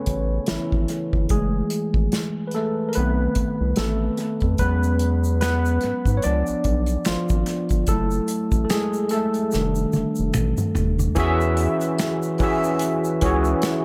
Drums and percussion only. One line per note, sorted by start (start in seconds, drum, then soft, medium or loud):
0.06 kick medium
0.06 closed hi-hat medium
0.46 snare loud
0.46 closed hi-hat medium
0.72 kick medium
0.88 closed hi-hat medium
1.13 kick medium
1.29 kick medium
1.29 closed hi-hat medium
1.70 closed hi-hat medium
1.94 kick medium
2.12 snare medium
2.12 closed hi-hat medium
2.51 closed hi-hat medium
2.93 closed hi-hat medium
3.35 kick medium
3.35 closed hi-hat medium
3.76 snare loud
3.76 closed hi-hat medium
4.17 closed hi-hat medium
4.40 kick medium
4.40 closed hi-hat soft
4.58 kick medium
4.58 closed hi-hat medium
4.58 shaker medium
4.83 shaker soft
4.99 closed hi-hat medium
5.24 shaker soft
5.41 finger snap medium
5.41 snare medium
5.41 closed hi-hat medium
5.41 shaker medium
5.65 shaker soft
5.81 closed hi-hat medium
6.05 kick medium
6.05 shaker soft
6.22 closed hi-hat medium
6.22 shaker medium
6.47 shaker soft
6.64 kick medium
6.64 closed hi-hat medium
6.86 closed hi-hat soft
6.86 shaker soft
7.05 finger snap medium
7.05 snare loud
7.05 closed hi-hat medium
7.05 shaker medium
7.29 kick medium
7.29 shaker soft
7.46 snare soft
7.46 closed hi-hat medium
7.46 shaker soft
7.69 kick medium
7.69 closed hi-hat soft
7.69 shaker soft
7.87 kick medium
7.87 closed hi-hat medium
7.87 shaker medium
8.11 shaker soft
8.28 closed hi-hat medium
8.28 shaker soft
8.52 kick medium
8.52 shaker soft
8.70 finger snap medium
8.70 snare medium
8.70 closed hi-hat medium
8.70 shaker medium
8.93 shaker soft
9.09 closed hi-hat medium
9.09 shaker soft
9.34 closed hi-hat soft
9.34 shaker soft
9.51 snare medium
9.51 shaker medium
9.75 shaker soft
9.93 high tom medium
9.93 shaker soft
10.16 shaker soft
10.34 finger snap medium
10.34 mid tom medium
10.34 shaker medium
10.57 mid tom medium
10.57 shaker soft
10.75 floor tom medium
10.75 shaker soft
10.99 floor tom medium
10.99 shaker soft
11.16 kick loud
11.16 closed hi-hat medium
11.16 shaker medium
11.41 shaker soft
11.57 closed hi-hat medium
11.81 closed hi-hat soft
11.81 shaker soft
11.98 finger snap medium
11.98 snare loud
11.98 closed hi-hat medium
11.98 shaker medium
12.22 shaker soft
12.38 kick loud
12.38 open hi-hat soft
12.38 shaker soft
12.64 shaker medium
12.79 closed hi-hat medium
12.79 shaker medium
13.04 shaker soft
13.21 kick medium
13.21 closed hi-hat medium
13.45 shaker soft
13.62 finger snap medium
13.62 snare loud
13.62 closed hi-hat medium
13.62 shaker medium